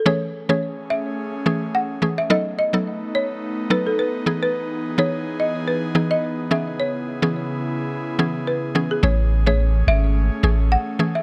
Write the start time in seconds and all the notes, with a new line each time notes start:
0.06 E3 A3 C#4 G#4 C#5
0.49 E3 A3 C#4 G#4 C#5
0.90 E5
1.46 E3 A3 C#4 G#4
1.75 F#5
2.02 E3 A3 C#4 G#4
2.18 E5
2.30 F#3 A3 B3 D#4 A4 D#5
2.59 D#5
2.73 F#3 B3 D#4 A4
3.15 C#5
3.70 F#3 B3 D#4 A4 B4
3.87 A4
3.99 B4
4.26 E3 B3 D#4 G#4
4.43 B4
4.98 E3 B3 D#4 G#4 C#5
5.40 D#5
5.68 B4
5.95 E3 B3 D#4 G#4
6.11 D#5
6.51 C#3 E3 B3 C#4 E4 G#4 E5
6.80 C#5
7.22 E3 B3 C#4 G#4
8.19 E3 B3 C#4 G#4
8.47 B4
8.75 E3 B3 C#4 G#4
8.91 G#4
9.03 A1 E3 A3 C#4 G#4 C#5
9.46 E3 A3 C#4 G#4 C#5
9.87 G#1 E5
10.43 A1 E3 A3 C#4 G#4
10.72 F#5
10.99 E3 A3 C#4 G#4
11.15 E5